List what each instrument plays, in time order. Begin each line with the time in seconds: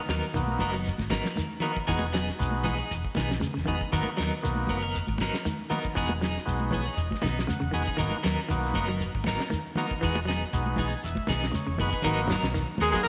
0.08 fingered electric bass D#2, clean electric guitar F#3 B3 D#4 A#4, snare, closed hi-hat, shekere
0.34 fingered electric bass B1, clean electric guitar D#3, transistor combo organ A#3 B3 D#4 F#4, closed hi-hat, shekere
0.48 closed hi-hat, high conga
0.59 fingered electric bass F#1, clean electric guitar F#3 B3 D#4 A#4, kick, open hi-hat, high conga, low conga, shekere
0.73 clean electric guitar F#3 B3 D#4, closed hi-hat
0.86 closed hi-hat, shekere
0.98 fingered electric bass G#1, kick, snare, closed hi-hat, high conga
1.10 clean electric guitar F#3 B3 D#4 A#4, kick, snare, closed hi-hat, high conga, shekere
1.24 snare, closed hi-hat, low conga
1.36 clean electric guitar D#3, closed hi-hat, high conga, shekere
1.50 closed hi-hat
1.60 clean electric guitar D#3 F#3 B3 D#4 A#4, transistor combo organ A#3 B3 D#4 F#4, closed hi-hat, low conga, shekere
1.76 kick, closed hi-hat
1.87 fingered electric bass E1, clean electric guitar E3 B3 D#4 G#4, transistor combo organ G#3 B3 D#4 F#4, kick, snare, closed hi-hat, shekere
1.99 closed hi-hat, high conga
2.12 clean electric guitar F#3 B3 D#4 G#4, snare, closed hi-hat, shekere
2.29 snare
2.39 fingered electric bass B1, transistor combo organ G#3 B3 D#4 F#4, closed hi-hat, shekere
2.51 high conga
2.63 clean electric guitar E3 B3 D#4 G#4, kick, open hi-hat, high conga, low conga, shekere
2.78 clean electric guitar D#4 G#4
2.91 fingered electric bass E1, closed hi-hat, shekere
3.05 kick
3.15 fingered electric bass B1, clean electric guitar D#3 B3 D#4 G#4, kick, snare, closed hi-hat, high conga, shekere
3.29 snare, closed hi-hat, low conga
3.40 clean electric guitar C#3, closed hi-hat, high conga, shekere
3.54 fingered electric bass E1, clean electric guitar C#3, snare
3.65 fingered electric bass E1, clean electric guitar D#3 B3 D#4 G#4, transistor combo organ G#3 B3 D#4 F#4, kick, closed hi-hat, low conga, shekere
3.81 kick, closed hi-hat
3.92 fingered electric bass G#1, clean electric guitar D#3 F#3 B3 D#4 A#4, transistor combo organ A#3 B3 D#4 F#4, kick, closed hi-hat, shekere
4.03 high conga
4.07 closed hi-hat
4.17 fingered electric bass D#2, clean electric guitar F#3 B3 D#4 A#4, snare, closed hi-hat, shekere
4.42 fingered electric bass B1, clean electric guitar D#3, transistor combo organ A#3 B3 D#4 F#4, closed hi-hat, shekere
4.55 closed hi-hat, high conga
4.67 fingered electric bass F#1, clean electric guitar F#3 B3 A#4, kick, open hi-hat, high conga, low conga, shekere
4.82 clean electric guitar B3 D#4 A#4, closed hi-hat
4.95 closed hi-hat, shekere
5.07 fingered electric bass G#1, kick, closed hi-hat, high conga
5.18 clean electric guitar F#3 B3 D#4 A#4, kick, snare, closed hi-hat, high conga, shekere
5.33 snare, closed hi-hat, low conga
5.45 clean electric guitar D#3, closed hi-hat, high conga, shekere
5.59 closed hi-hat
5.70 clean electric guitar D#3 F#3 B3 D#4 A#4, transistor combo organ A#3 B3 D#4 F#4, closed hi-hat, high conga, low conga, shekere
5.85 kick, closed hi-hat
5.95 fingered electric bass E1, transistor combo organ G#3 B3 D#4 F#4, clean electric guitar B3 D#4 G#4, muted clean electric guitar stroke, kick, closed hi-hat, shekere
6.09 closed hi-hat, high conga
6.21 clean electric guitar F#3 D#4 G#4, muted clean electric guitar stroke, snare, closed hi-hat, shekere
6.37 snare
6.45 fingered electric bass B1, transistor combo organ G#3 B3 D#4 F#4, closed hi-hat, shekere
6.60 high conga
6.71 clean electric guitar E3 B3 G#4, transistor combo organ C#5, muted clean electric guitar stroke, kick, open hi-hat, high conga, low conga, shekere
6.86 clean electric guitar D#4 G#4
6.97 fingered electric bass E1, transistor combo organ D#5, closed hi-hat, shekere
7.11 kick, snare, high conga
7.22 fingered electric bass B1, clean electric guitar D#3 B3 D#4, kick, closed hi-hat, high conga, shekere
7.26 snare
7.38 snare, closed hi-hat
7.47 clean electric guitar C#3, transistor combo organ F#5, closed hi-hat, high conga, shekere
7.60 fingered electric bass E1, clean electric guitar C#3
7.71 fingered electric bass E1, clean electric guitar D#3 B3 D#4 G#4, transistor combo organ G#3 B3 D#4 F#4 G#5, low conga, shekere
7.76 closed hi-hat
7.87 clean electric guitar D#4 G#4, kick, closed hi-hat
7.97 fingered electric bass G#1, clean electric guitar D#3 F#3 D#4 A#4, transistor combo organ A#3 B3 D#4 F#4, muted clean electric guitar stroke, kick, closed hi-hat, shekere
8.11 closed hi-hat, high conga
8.23 fingered electric bass D#2, clean electric guitar F#3 B3 D#4 A#4, snare, closed hi-hat, shekere
8.39 snare
8.49 fingered electric bass B1, clean electric guitar D#3, transistor combo organ A#3 B3 D#4 F#4, closed hi-hat, shekere
8.64 snare, closed hi-hat
8.74 fingered electric bass F#1, clean electric guitar F#3 B3 D#4 A#4, kick, open hi-hat, high conga, low conga, shekere
8.88 clean electric guitar F#3 B3 D#4 A#4, closed hi-hat
9.01 closed hi-hat, shekere
9.14 fingered electric bass G#1, kick, closed hi-hat
9.24 clean electric guitar F#3 B3 D#4 A#4, kick, snare, closed hi-hat, high conga, shekere
9.38 snare, closed hi-hat, low conga
9.50 clean electric guitar D#3, closed hi-hat, high conga, shekere
9.67 closed hi-hat
9.75 clean electric guitar D#3 F#3 B3 D#4 A#4, transistor combo organ A#3 B3 D#4 F#4, closed hi-hat, high conga, low conga, shekere
9.91 kick, closed hi-hat
10.01 fingered electric bass E1, clean electric guitar E3 B3 D#4 G#4, transistor combo organ G#3 B3 D#4 F#4, kick, closed hi-hat, shekere
10.15 closed hi-hat, high conga
10.25 clean electric guitar F#3 B3 D#4 G#4, closed hi-hat
10.29 snare, shekere
10.53 fingered electric bass B1, transistor combo organ G#3 B3 D#4 F#4, closed hi-hat, shekere
10.66 high conga
10.76 clean electric guitar E3 B3 D#4 G#4, transistor combo organ G#5, kick, open hi-hat, high conga, low conga
10.81 shekere
11.03 fingered electric bass E1, transistor combo organ E5, closed hi-hat, shekere
11.15 kick, high conga
11.27 fingered electric bass B1, clean electric guitar D#3 B3 D#4 G#4, transistor combo organ D#5, kick, snare, closed hi-hat, high conga, shekere
11.41 snare, closed hi-hat, low conga
11.52 clean electric guitar C#3, transistor combo organ C#5, closed hi-hat, high conga, shekere
11.67 fingered electric bass E1, clean electric guitar C#3
11.78 fingered electric bass F#1, clean electric guitar D#3 B3 D#4 G#4, transistor combo organ G#3 B3 D#4 F#4 B4, kick, closed hi-hat, high conga, low conga, shekere
11.93 clean electric guitar D#4 G#4, kick, closed hi-hat
12.02 fingered electric bass G#1, clean electric guitar D#3 F#3 B3 D#4 A#4, transistor combo organ A#3 B3 D#4 F#4, kick, closed hi-hat, high conga, low conga, shekere
12.28 clean electric guitar F#3 B3, snare, closed hi-hat, high conga, low conga, shekere
12.32 clean electric guitar D#4 A#4
12.43 fingered electric bass B1, snare, shekere
12.54 clean electric guitar D#3, closed hi-hat, high conga, shekere
12.78 fingered electric bass D#2, clean electric guitar F#3 B3 D#4 A#4, tenor saxophone G#3, trumpet G#4, snare, open hi-hat, high conga, low conga, shekere
12.92 clean electric guitar F#3, tenor saxophone G#3, transistor combo organ A#3 B3 D#4 F#4, trumpet G#4, kick, shekere
13.03 trumpet A#4, closed hi-hat, high conga